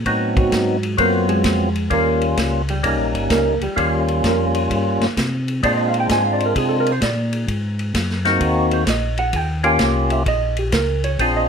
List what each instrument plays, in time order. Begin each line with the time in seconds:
0.06 tonewheel organ A2 F#3 B3 C4 D#4, kick, ride
0.37 hollow-body jazz guitar F#3 F#4, kick, ride
0.52 tonewheel organ G#2, kick, snare, hi-hat pedal, ride
0.83 ride
0.98 tonewheel organ F#2 F#3 B3 C4 F4, hollow-body jazz guitar A#3 A#4, kick, ride
1.29 hollow-body jazz guitar G#3 G#4, ride
1.44 tonewheel organ F2, kick, snare, hi-hat pedal, ride
1.75 ride
1.90 tonewheel organ D#2 G3 A#3 C#4 F4, hollow-body jazz guitar A#3 A#4, kick, ride
2.21 ride
2.37 tonewheel organ C#2, kick, snare, hi-hat pedal, ride
2.69 hollow-body jazz guitar G3 G4, ride
2.83 tonewheel organ C2 G3 A#3 C#4 D#4, kick, ride
2.99 tonewheel organ A#1
3.13 tonewheel organ G1, ride
3.30 tonewheel organ C#2, hollow-body jazz guitar A#3 A#4, kick, snare, hi-hat pedal, ride
3.60 tonewheel organ C#2, hollow-body jazz guitar G3 G4, ride
3.76 tonewheel organ D#2 G3 A#3 C#4 F4, kick, ride
4.08 ride
4.24 tonewheel organ F2, hollow-body jazz guitar A#3 A#4, kick, snare, hi-hat pedal, ride
4.54 ride
4.70 tonewheel organ G2, kick, ride
5.00 tonewheel organ G2, snare, ride
5.17 tonewheel organ C3, kick, snare, hi-hat pedal, ride
5.48 ride
5.63 tonewheel organ A#2 G#3 C4 D4 F4, hollow-body jazz guitar D5, kick, ride
5.77 hollow-body jazz guitar D#5
5.88 hollow-body jazz guitar F5
5.94 ride
6.00 hollow-body jazz guitar G5
6.09 tonewheel organ G#2, hollow-body jazz guitar G#5, kick, snare, hi-hat pedal, ride
6.24 hollow-body jazz guitar F5
6.33 hollow-body jazz guitar D5
6.40 ride
6.46 hollow-body jazz guitar A#4
6.55 tonewheel organ C3, hollow-body jazz guitar G#4, kick, ride
6.69 hollow-body jazz guitar A4
6.80 hollow-body jazz guitar A#4
6.86 ride
6.92 hollow-body jazz guitar C5
7.01 tonewheel organ A#2, hollow-body jazz guitar D5, kick, snare, hi-hat pedal, ride
7.33 ride
7.48 tonewheel organ G#2, kick, ride
7.79 ride
7.94 tonewheel organ F#2, kick, snare, hi-hat pedal, ride
8.10 snare
8.25 tonewheel organ A#3 C4 D#4 F#4, snare, ride
8.41 tonewheel organ D#2, kick, ride
8.71 hollow-body jazz guitar C5, ride
8.86 tonewheel organ A#1, hollow-body jazz guitar D#5, kick, snare, hi-hat pedal, ride
9.17 hollow-body jazz guitar F#5, ride
9.33 tonewheel organ D#2, hollow-body jazz guitar G5, kick, ride
9.64 tonewheel organ A#3 C#4 F4 G4, hollow-body jazz guitar G#5, ride
9.79 tonewheel organ C2, kick, snare, hi-hat pedal, ride
9.83 hollow-body jazz guitar F5
10.10 hollow-body jazz guitar E5, ride
10.26 tonewheel organ A#1, hollow-body jazz guitar D#5, kick, ride
10.57 hollow-body jazz guitar G4, ride
10.72 tonewheel organ C#2, hollow-body jazz guitar A#4, kick, snare, hi-hat pedal, ride
11.04 hollow-body jazz guitar C#5, ride
11.19 tonewheel organ A#1 C4 D4 F4 G#4, hollow-body jazz guitar D5, kick, ride
11.37 hollow-body jazz guitar D#5